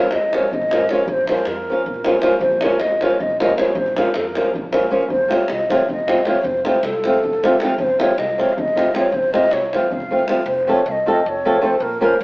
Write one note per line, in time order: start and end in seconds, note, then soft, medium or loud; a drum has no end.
0.00 0.14 C#5 medium
0.00 davul high soft
0.11 0.36 F2 loud
0.11 0.37 D#5 loud
0.11 davul high medium
0.22 davul high soft
0.33 0.45 F3 medium
0.33 0.46 A#3 soft
0.33 0.45 C#4 medium
0.33 0.46 F4 medium
0.33 0.54 C#5 medium
0.33 davul high medium
0.43 davul high soft
0.51 0.86 A#1 medium
0.51 0.91 D#5 loud
0.51 davul low medium
0.62 davul high soft
0.71 0.84 F3 medium
0.71 0.84 A#3 soft
0.71 0.84 C#4 medium
0.71 0.84 F4 medium
0.71 davul high medium
0.89 1.01 F3 medium
0.89 1.02 A#3 medium
0.89 1.02 C#4 medium
0.89 1.02 F4 medium
0.89 1.04 C#5 medium
0.89 davul high medium
1.04 1.31 A#1 medium
1.04 1.07 C#5 medium
1.04 1.13 C#5 medium
1.04 davul low medium
1.12 1.28 C5 loud
1.27 1.41 F3 medium
1.27 1.41 A#3 medium
1.27 1.41 C#4 medium
1.27 1.42 F4 medium
1.27 1.49 C5 medium
1.27 davul high medium
1.37 davul high soft
1.45 1.70 F2 medium
1.45 2.24 A#4 medium
1.45 davul high medium
1.70 1.81 F3 medium
1.70 1.81 A#3 medium
1.70 1.82 C#4 medium
1.70 1.82 F4 medium
1.85 2.19 A#1 medium
1.85 davul low medium
1.94 davul high soft
2.04 2.17 F3 medium
2.04 2.17 A#3 medium
2.04 2.18 C#4 medium
2.04 2.18 F4 medium
2.04 davul high medium
2.14 davul high soft
2.22 2.34 F3 medium
2.22 2.34 A#3 medium
2.22 2.35 C#4 medium
2.22 2.35 F4 medium
2.22 davul high medium
2.40 2.65 A#1 medium
2.40 2.63 C5 loud
2.40 davul low medium
2.61 2.75 F3 medium
2.61 2.75 A#3 medium
2.61 2.75 C#4 medium
2.61 2.82 C#5 medium
2.61 davul high medium
2.65 2.76 F4 medium
2.70 davul high soft
2.80 3.04 F2 loud
2.80 3.03 D#5 loud
2.80 davul high medium
2.91 davul high soft
3.01 3.14 F3 medium
3.01 3.14 A#3 medium
3.01 3.14 C#4 medium
3.01 3.14 F4 medium
3.01 3.10 C#5 medium
3.01 davul high medium
3.09 3.13 C5 medium
3.09 3.22 C#5 medium
3.09 davul high soft
3.20 3.53 A#1 medium
3.20 3.40 D#5 loud
3.20 davul low medium
3.30 davul high soft
3.40 3.52 F3 medium
3.40 3.52 A#3 medium
3.40 3.52 C#4 medium
3.40 3.52 F4 medium
3.40 3.57 D#5 loud
3.40 davul high medium
3.49 davul high soft
3.57 3.69 F3 medium
3.57 3.69 A#3 medium
3.57 3.69 C#4 medium
3.57 3.70 F4 medium
3.57 3.77 C#5 medium
3.57 davul high medium
3.75 3.99 A#1 medium
3.75 3.96 C5 loud
3.75 davul low medium
3.86 davul high soft
3.96 4.08 F3 medium
3.96 4.09 A#3 medium
3.96 4.09 C#4 medium
3.96 4.09 F4 medium
3.96 4.16 C5 medium
3.96 davul high medium
4.05 davul high soft
4.14 4.39 F2 loud
4.14 4.67 A#4 medium
4.14 davul high medium
4.35 4.48 F3 medium
4.35 4.48 A#3 soft
4.35 4.49 C#4 soft
4.35 4.49 F4 medium
4.35 davul high medium
4.45 davul high soft
4.53 4.88 A#1 medium
4.53 davul low medium
4.72 4.85 F3 medium
4.72 4.85 A#3 medium
4.72 4.85 C#4 medium
4.72 4.86 F4 medium
4.72 davul high medium
4.83 davul high soft
4.90 5.02 F3 medium
4.90 5.03 A#3 medium
4.90 5.03 C#4 medium
4.90 5.03 F4 medium
5.01 davul high soft
5.09 5.34 F1 medium
5.09 5.35 C5 medium
5.09 davul low medium
5.28 5.41 F3 medium
5.28 5.41 A3 medium
5.28 5.42 C4 medium
5.28 5.42 F4 medium
5.28 davul high medium
5.33 5.53 C#5 medium
5.39 davul high soft
5.48 5.73 C2 medium
5.48 5.71 D#5 medium
5.48 davul high medium
5.59 davul high soft
5.69 5.82 F3 medium
5.69 5.82 A3 medium
5.69 5.82 C4 soft
5.69 5.82 F4 medium
5.69 5.88 C#5 medium
5.69 davul high medium
5.79 davul high soft
5.88 6.22 F1 medium
5.88 6.28 D#5 medium
5.88 davul low medium
5.99 davul high soft
6.07 6.19 F3 medium
6.07 6.19 A3 medium
6.07 6.20 C4 medium
6.07 6.20 F4 medium
6.07 davul high medium
6.17 davul high soft
6.25 6.37 F3 medium
6.25 6.37 A3 medium
6.25 6.38 C4 medium
6.25 6.38 F4 medium
6.25 6.45 C#5 medium
6.25 davul high medium
6.43 6.68 F1 medium
6.43 6.65 C5 medium
6.43 davul low medium
6.65 6.76 F3 medium
6.65 6.77 A3 medium
6.65 6.77 C4 medium
6.65 6.77 F4 medium
6.65 6.85 C5 medium
6.65 davul high medium
6.74 davul high soft
6.83 7.07 C2 loud
6.83 7.60 A4 medium
6.83 davul high medium
6.93 davul high soft
7.04 7.16 F3 medium
7.04 7.17 A3 medium
7.04 7.17 C4 medium
7.04 7.17 F4 medium
7.04 davul high medium
7.14 davul high soft
7.23 7.56 F1 medium
7.23 davul low medium
7.33 davul high soft
7.43 7.54 F3 medium
7.43 7.54 A3 medium
7.43 7.55 C4 medium
7.43 7.55 F4 medium
7.43 davul high medium
7.52 davul high soft
7.60 7.72 F3 medium
7.60 7.73 A3 medium
7.60 7.73 C4 medium
7.60 davul high medium
7.64 7.74 F4 medium
7.78 8.02 F1 medium
7.78 7.83 C#5 loud
7.78 davul low medium
7.82 8.03 C5 loud
7.99 8.11 F3 medium
7.99 8.11 A3 medium
7.99 8.11 C4 medium
7.99 8.11 F4 medium
7.99 8.19 C#5 loud
7.99 davul high medium
8.09 davul high soft
8.18 8.41 C2 loud
8.18 8.42 D#5 medium
8.18 davul high medium
8.29 davul high soft
8.38 8.50 F3 medium
8.38 8.50 A3 medium
8.38 8.51 C4 medium
8.38 8.51 F4 medium
8.38 8.53 C#5 medium
8.38 davul high medium
8.49 8.61 F5 medium
8.49 davul high soft
8.57 8.90 F1 medium
8.57 8.96 D#5 loud
8.57 davul low medium
8.68 davul high soft
8.76 8.88 F3 medium
8.76 8.88 A3 medium
8.76 8.88 C4 medium
8.76 8.88 F4 medium
8.76 davul high medium
8.86 davul high soft
8.94 9.05 F3 medium
8.94 9.05 A3 medium
8.94 9.06 C4 medium
8.94 9.06 F4 medium
8.94 9.15 C#5 medium
8.94 davul high medium
9.12 9.36 F1 medium
9.12 9.32 C5 loud
9.12 davul low medium
9.23 davul high soft
9.32 9.45 F3 medium
9.32 9.45 A3 medium
9.32 9.45 C4 medium
9.32 9.46 F4 medium
9.32 9.54 D#5 medium
9.32 davul high medium
9.43 davul high soft
9.51 9.75 C2 medium
9.51 9.76 C#5 medium
9.51 davul high medium
9.62 davul high soft
9.73 9.85 F3 medium
9.73 9.85 A3 soft
9.73 9.86 C4 medium
9.73 9.86 F4 medium
9.73 9.94 C5 medium
9.73 davul high medium
9.90 10.24 F1 medium
9.90 10.22 F5 loud
9.90 davul low medium
10.00 davul high soft
10.11 10.22 F3 medium
10.11 10.22 A3 medium
10.11 10.23 C4 medium
10.11 10.23 F4 medium
10.19 davul high soft
10.28 10.40 F3 medium
10.28 10.40 A3 medium
10.28 10.40 C4 medium
10.28 10.40 F4 medium
10.28 davul high medium
10.46 10.70 F1 loud
10.46 10.67 C5 medium
10.67 10.79 F3 medium
10.67 10.79 A3 medium
10.67 10.80 C4 medium
10.67 10.80 F4 medium
10.67 10.80 A4 medium
10.67 10.89 C#5 medium
10.86 11.10 C2 loud
10.86 10.92 F5 medium
10.91 11.08 D#5 loud
11.06 11.18 F3 medium
11.06 11.18 A3 medium
11.06 11.19 C4 medium
11.06 11.19 F4 medium
11.06 11.19 A4 medium
11.06 11.29 D#5 medium
11.26 11.59 F1 loud
11.26 11.66 C#5 medium
11.45 11.57 F3 medium
11.45 11.56 A3 medium
11.45 11.57 C4 medium
11.45 11.57 F4 medium
11.45 11.57 A4 medium
11.61 11.73 F3 medium
11.61 11.73 A3 medium
11.61 11.73 C4 medium
11.61 11.73 F4 medium
11.61 11.74 A4 medium
11.61 11.83 C5 medium
11.80 12.04 A#1 loud
11.80 12.05 A#4 loud
12.01 12.13 F3 medium
12.01 12.13 A#3 medium
12.01 12.13 C#4 medium
12.01 12.13 F4 medium
12.01 12.14 A#4 medium
12.01 12.20 C5 medium
12.20 12.24 F2 loud
12.20 12.24 C#5 loud